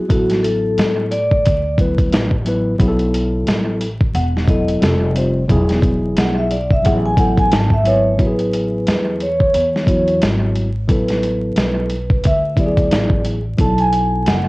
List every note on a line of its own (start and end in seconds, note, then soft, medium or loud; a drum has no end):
0.08 0.74 A1 medium
0.08 1.14 F#3 medium
0.08 1.15 B3 medium
0.08 1.15 E4 medium
0.08 0.41 F#4 medium
0.08 1.16 A4 medium
0.08 kick loud
0.08 closed hi-hat medium
0.30 snare soft
0.30 closed hi-hat medium
0.43 1.13 A4 medium
0.43 closed hi-hat medium
0.78 1.42 A2 medium
0.78 snare loud
0.78 closed hi-hat medium
1.11 1.75 D5 loud
1.11 closed hi-hat medium
1.31 kick medium
1.45 2.10 D2 medium
1.45 kick loud
1.45 closed hi-hat loud
1.77 2.33 F#3 medium
1.77 2.34 B3 medium
1.77 2.34 E4 medium
1.77 2.35 B4 medium
1.77 kick loud
1.77 closed hi-hat medium
1.98 kick medium
1.98 closed hi-hat soft
2.12 2.77 A1 loud
2.12 snare loud
2.12 closed hi-hat loud
2.31 kick medium
2.45 2.73 F#3 medium
2.45 2.74 B3 medium
2.45 2.74 E4 medium
2.45 2.75 B4 medium
2.45 closed hi-hat medium
2.78 3.44 B1 loud
2.78 3.84 F#3 medium
2.78 3.85 B3 medium
2.78 3.85 E4 medium
2.78 2.88 G#4 medium
2.78 kick loud
2.78 closed hi-hat loud
2.88 3.89 A4 loud
2.99 closed hi-hat soft
3.14 closed hi-hat medium
3.47 4.12 A1 medium
3.47 snare loud
3.47 closed hi-hat loud
3.81 closed hi-hat medium
4.01 kick loud
4.15 4.79 E1 loud
4.15 4.50 F#5 loud
4.15 closed hi-hat medium
4.37 snare soft
4.47 4.81 F#3 medium
4.47 4.82 B3 medium
4.47 4.83 E4 medium
4.47 4.83 A4 medium
4.47 5.12 D#5 loud
4.47 kick medium
4.47 closed hi-hat medium
4.68 closed hi-hat soft
4.81 5.46 F1 loud
4.81 5.10 G3 medium
4.81 5.10 C4 medium
4.81 5.11 F4 medium
4.81 5.11 A4 medium
4.81 snare loud
4.81 closed hi-hat loud
5.14 5.42 G3 medium
5.14 5.43 C4 medium
5.14 5.43 F4 medium
5.14 5.44 C5 medium
5.14 closed hi-hat medium
5.48 6.14 E1 loud
5.48 6.54 F#3 medium
5.48 6.54 B3 medium
5.48 6.55 E4 medium
5.48 6.55 G#4 loud
5.48 kick loud
5.48 closed hi-hat loud
5.69 snare soft
5.69 closed hi-hat soft
5.82 kick medium
5.82 closed hi-hat medium
6.17 6.81 B1 medium
6.17 6.38 F#5 medium
6.17 snare loud
6.17 closed hi-hat loud
6.38 6.50 E5 medium
6.51 6.71 D5 medium
6.51 closed hi-hat medium
6.70 6.86 E5 medium
6.70 kick loud
6.83 7.49 A1 loud
6.83 7.12 F#3 medium
6.83 7.12 B3 medium
6.83 7.13 E4 medium
6.83 7.13 G#4 medium
6.83 7.05 F#5 medium
6.83 kick loud
6.83 closed hi-hat loud
7.05 7.19 G#5 loud
7.16 7.72 F#3 medium
7.16 7.73 B3 medium
7.16 7.73 E4 medium
7.16 7.74 A4 medium
7.16 7.39 F#5 medium
7.16 kick loud
7.16 closed hi-hat medium
7.37 7.53 G#5 loud
7.37 kick medium
7.37 closed hi-hat soft
7.52 8.16 G#1 loud
7.52 7.73 A5 loud
7.52 snare loud
7.52 closed hi-hat loud
7.70 8.17 E5 loud
7.70 kick medium
7.84 8.12 F#3 medium
7.84 8.13 B3 medium
7.84 8.13 E4 medium
7.84 8.14 B4 medium
7.84 8.21 C#5 loud
7.84 closed hi-hat medium
8.17 8.83 A1 medium
8.17 9.23 F#3 medium
8.17 9.24 B3 medium
8.17 9.24 E4 medium
8.17 8.27 F#4 medium
8.17 kick loud
8.17 closed hi-hat medium
8.21 9.24 B4 medium
8.27 9.28 G#4 medium
8.39 closed hi-hat soft
8.53 closed hi-hat medium
8.87 9.51 E2 medium
8.87 snare loud
8.87 closed hi-hat medium
9.20 10.18 C#5 medium
9.20 closed hi-hat medium
9.40 kick medium
9.54 10.18 E2 medium
9.54 closed hi-hat loud
9.76 snare soft
9.86 10.67 F#3 medium
9.86 10.68 B3 medium
9.86 10.68 E4 medium
9.86 10.69 F#4 medium
9.86 kick medium
9.86 closed hi-hat medium
10.08 closed hi-hat soft
10.22 10.86 G#1 medium
10.22 snare loud
10.22 closed hi-hat loud
10.55 closed hi-hat medium
10.87 11.53 A1 loud
10.87 11.93 F#3 medium
10.87 11.94 B3 medium
10.87 11.94 E4 medium
10.87 11.95 A4 medium
10.87 12.29 B4 medium
10.87 kick loud
10.87 closed hi-hat medium
11.08 snare soft
11.08 closed hi-hat soft
11.23 closed hi-hat medium
11.56 12.20 B1 medium
11.56 snare loud
11.56 closed hi-hat medium
11.90 closed hi-hat medium
12.10 kick loud
12.24 12.89 D2 loud
12.24 12.60 E5 loud
12.24 kick loud
12.24 closed hi-hat loud
12.56 13.37 F#3 medium
12.56 13.38 B3 medium
12.56 13.38 E4 medium
12.56 12.66 G4 medium
12.56 13.22 D5 medium
12.56 kick medium
12.56 closed hi-hat medium
12.66 13.42 G#4 medium
12.77 kick medium
12.77 closed hi-hat soft
12.91 13.56 A1 medium
12.91 snare loud
12.91 closed hi-hat loud
13.10 kick loud
13.25 closed hi-hat medium
13.57 14.23 B1 medium
13.57 14.48 F#3 medium
13.57 14.48 B3 medium
13.57 14.48 E4 medium
13.57 14.48 A4 medium
13.57 13.80 A5 loud
13.57 kick loud
13.57 closed hi-hat medium
13.78 14.28 G#5 loud
13.78 closed hi-hat soft
13.93 closed hi-hat medium
14.26 14.48 F#1 medium
14.26 14.48 F#5 loud
14.26 snare loud
14.26 closed hi-hat medium